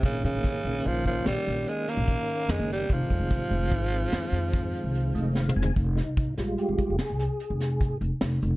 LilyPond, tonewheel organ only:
<<
  \new Staff \with { instrumentName = "Tonewheel organ" } { \time 7/4 \key f \minor \tempo 4 = 147 r1. r4 | r1 r4. ees''8 f''8 aes''8 | r8 ees'4 f'8 g'4 aes'2~ aes'8 r4. | }
  \new Staff \with { instrumentName = "Tonewheel organ" } { \clef bass \time 7/4 \key f \minor <ees bes des'>1.~ <ees bes des'>4 | <ees aes c'>1.~ <ees aes c'>4 | r4. <g aes>4. r1 | }
>>